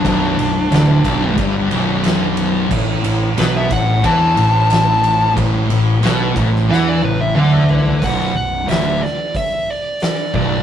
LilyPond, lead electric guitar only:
\new Staff \with { instrumentName = "Lead electric guitar" } { \time 4/4 \key b \minor \tempo 4 = 90 << { r1 | r1 | r2. e''4 | fis''8 fis''8 e''8 d''8 e''8 d''8 d''8 d''8 | } \\ { d'2 r2 | r4 b'16 e''16 fis''8 a''2 | r2 fis''16 d''16 b'16 e''16 fis''16 d''16 b'8 | r1 | } >> }